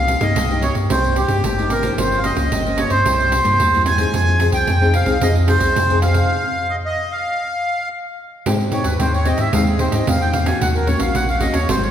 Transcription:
Already playing: C2 C3 A#3 D#4 G4 F5
0.08 pandeiro
0.21 G2 A#3 D#4 G4 D#5, pandeiro
0.36 C2 G2, pandeiro
0.51 A#3 D#4 G4, pandeiro
0.62 C#5, pandeiro
0.75 G2, pandeiro
0.90 C2 C3 A#3 D#4 G4 C5, pandeiro
1.04 pandeiro
1.16 G4, pandeiro
1.28 G2 A#3 D#4 G4, pandeiro
1.44 G#1 G2, pandeiro
1.59 A#3 D#4 G4, pandeiro
1.70 A#4, pandeiro
1.83 F3 A#3 C#4, pandeiro
1.98 G1 G2 C5, pandeiro
2.12 pandeiro
2.18 F5
2.24 F3 A#3 C#4 D#5, pandeiro
2.37 C#2, pandeiro
2.52 G1 G2, pandeiro
2.66 F3 A#3 C#4, pandeiro
2.78 C#5, pandeiro
2.90 G2 C5, pandeiro
3.06 C2 C3 G3 A#3 E4, pandeiro
3.20 pandeiro
3.32 pandeiro
3.44 G2 G3 A#3 E4, pandeiro
3.59 E2 G2, pandeiro
3.73 G3 A#3 E4, pandeiro
3.86 G#5, pandeiro
3.98 C4 D#4 G#4, pandeiro
4.14 F2 F3, pandeiro
4.28 pandeiro
4.39 C4 D#4 G#4, pandeiro
4.52 C2 G5, pandeiro
4.67 F2 C3, pandeiro
4.81 C4 D#4 G#4, pandeiro
4.94 F5, pandeiro
5.06 C2 C4 D#4 G#4, pandeiro
5.21 F2 F3 C4 D#4 G#4 D#5, pandeiro
5.36 pandeiro
5.47 C4 D#4 G#4 C5, pandeiro
5.60 C2, pandeiro
5.76 F2 C3, pandeiro
5.90 C4 D#4 G#4, pandeiro
6.02 F5, pandeiro
6.14 pandeiro
6.70 D#5
6.85 D#5
7.12 F5
8.46 G#2 G#3 C4 D#4 G4, pandeiro
8.60 pandeiro
8.72 C4 D#4 G4 C#5, pandeiro
8.84 D#2 B4, pandeiro
8.99 D#2 D#3 C4 D#4 G4 C5, pandeiro
9.14 C#5, pandeiro
9.25 C4 D#4 G4 D#5, pandeiro
9.38 G#2 E5, pandeiro
9.53 D#2 G#3 C4 D#4 G4 F5, pandeiro
9.67 G#4, pandeiro
9.79 C4 D#4 G4 C5, pandeiro
9.92 G#2 C4 D#4 G4 D#5, pandeiro
10.07 E2 D#3 F5, pandeiro
10.21 G5, pandeiro
10.33 F5, pandeiro
10.46 A#3 C#4 F#4 G#5, pandeiro
10.61 D#2 D#3 F#5, pandeiro
10.75 A#4, pandeiro
10.87 A#3 C#4 F#4 C#5, pandeiro
11.00 A#1 F5, pandeiro
11.15 A#1 A#2 F#5, pandeiro
11.29 F5, pandeiro
11.41 A#3 C#4 F#4 D#5, pandeiro
11.54 D#2 C#5, pandeiro
11.69 G#1 G#2 F#3 C4 D#4 C5, pandeiro
11.83 C#5, pandeiro

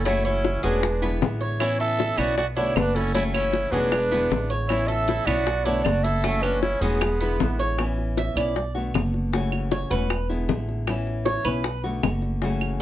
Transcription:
Already playing: F#1
0.05 C#3 E3 A3 C#4 E4 F#4 C#5, high bongo
0.25 C#4 E4 C#5, high bongo
0.45 high bongo
0.63 E1 E3 G#3 A3 C#4 D4 F#4 B4
0.83 muted nylon-string guitar stroke, high bongo
1.02 D3 G#3 B3 E4, high bongo
1.21 A1 D3 G#3 B3 E4, high bongo, low bongo
1.41 C#5, high bongo
1.60 E3 B3 C#4 E4 C#5, high bongo, claves
1.80 A4 E5, high bongo
1.99 E4, high bongo
2.18 B1 B3 C#4 E4 F#4 D5, claves
2.37 F#4 D5, muted nylon-string guitar stroke, high bongo
2.56 D3 A3 B3 D4 E4 F#4 C#5, high bongo
2.75 F#1 D3 A3 B3 D4 F#4 B4, high bongo, low bongo, claves
2.95 C#4 E4 A4, high bongo
3.14 C#3 E3 A3 C#4 E4 F#4 C#5, high bongo
3.34 C#4 E4 C#5, high bongo, claves
3.53 high bongo
3.71 E1 E3 G#3 A3 C#4 D4 F#4 B4
3.92 muted nylon-string guitar stroke, high bongo, claves
4.12 D3 G#3 B3 E4, high bongo
4.30 A1 D3 G#3 B3 E4, high bongo, low bongo
4.50 C#5, high bongo
4.67 E3 B3 C#4 E4 C#5, high bongo, claves
4.87 A4 E5, high bongo
5.08 E4, high bongo
5.25 B1 B3 C#4 E4 F#4 D5, claves
5.47 muted nylon-string guitar stroke, high bongo
5.64 D3 A3 B3 D4 E4 F#4 C#5, high bongo
5.84 F#1 D3 A3 B3 F#4 D5, high bongo, low bongo, claves
6.03 E4 A4 E5, high bongo
6.24 C#3 E3 A3 C#4 F#4, high bongo
6.42 C#4 D4 B4, high bongo, claves
6.62 E4 C#5, high bongo
6.80 E1 E3 G#3 A3 B3 C#4 F#4 G#4
7.01 muted nylon-string guitar stroke, high bongo, claves
7.20 D3 G#3 B3 E4, high bongo
7.39 A1 D3 G#3 B3 E4, high bongo, low bongo
7.59 C#5, high bongo
7.78 E3 B3 C#4 E4, high bongo, claves
7.98 high bongo
8.17 E5, high bongo
8.35 B1 B3 C#4 E4 D5, claves
8.56 muted nylon-string guitar stroke, high bongo
8.75 D3 A3 B3 F#4, high bongo
8.94 F#1 D3 A3 B3 F#4, high bongo, low bongo, claves
9.14 high bongo
9.32 C#3 E3 A3 C#4 F#4, high bongo
9.52 high bongo, claves
9.71 C#5, high bongo
9.90 E1 E3 A3 C#4 F#4 B4
10.10 muted nylon-string guitar stroke, high bongo, claves
10.29 D3 G#3 B3 E4, high bongo
10.48 A1 D3 G#3 B3 E4, high bongo, low bongo
10.69 high bongo
10.87 E3 B3 C#4 E4, high bongo, claves
11.07 high bongo
11.25 C#5, high bongo
11.45 B1 B3 C#4 E4 B4, claves
11.64 muted nylon-string guitar stroke, high bongo
11.84 D3 A3 B3 F#4, high bongo
12.03 F#1 D3 A3 B3 F#4, high bongo, low bongo, claves
12.22 high bongo
12.42 C#3 E3 A3 C#4 F#4, high bongo
12.61 high bongo, claves

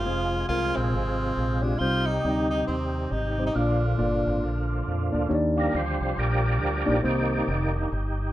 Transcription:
Already playing: F4
0.05 F1 C3 F3 G#3 C4 F4 G#4 C5
0.48 C2 G#3 C4 F4 A#4
0.76 A#1 C4
0.93 G#1
1.37 A#1
1.62 G#3 C4 D4 F4 G4
1.78 C2 C3 G3 C4 D#4 F4 G4 C5
2.06 D#4
2.24 D2 G3 C4 D#4 D5
2.30 D#5
2.50 D#4
2.67 D#2 C4
3.11 G#1 D#4
3.38 G3 C4 D#4 C5
3.47 D#4
3.54 A#1 A#2 D3 F3 A#3 D4 F4 D5
3.98 G1 A#3 D4 F4 D5
4.27 G#1
4.44 A#1
4.88 F2
5.12 D2 A#3 D4 F4 D5
5.29 D#2 D#3 A#3 D4 D#4 G4 C#5
5.35 D5
5.56 F3 G3 D4 A#4
5.75 D2 C5
6.01 C2 C5
6.18 A#1 G4 A#4 D5
6.61 D2
6.86 A#1 A#3 D4 D#4 G4 D5
7.02 C2 C3 D#3 A#3 C4 D#4 G4 C5 D5
7.48 F1
7.75 D#3 A#3 D4
7.92 G1

